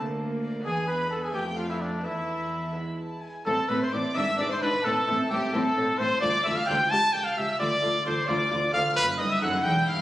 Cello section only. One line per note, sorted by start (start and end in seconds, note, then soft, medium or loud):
0.00 0.64 D2 medium
0.66 1.35 E2 medium
1.34 2.04 F2 medium
2.05 3.26 E2 soft
3.46 3.54 A2 medium
3.70 3.78 A2 medium
3.92 4.00 A2 medium
4.17 4.25 G#2 medium
4.39 4.47 G#2 medium
4.63 4.71 G#2 medium
4.86 4.94 A2 medium
5.09 5.17 A2 medium
5.31 5.39 A2 medium
5.54 5.62 A2 medium
5.77 5.85 A2 medium
6.00 6.08 A2 medium
6.22 6.30 D2 medium
6.46 6.54 D2 medium
6.69 6.77 D2 loud
6.92 7.00 C#2 medium
7.14 7.22 C#2 medium
7.39 7.47 C#2 medium
7.61 7.69 D2 loud
7.84 7.92 D2 medium
8.07 8.15 D2 medium
8.29 8.37 D2 loud
8.52 8.60 D2 medium
8.75 8.83 D2 medium
8.97 9.18 F#2 medium
9.19 9.27 G2 medium
9.41 9.64 F#2 loud
9.65 9.87 E2 medium
9.87 10.02 G2 medium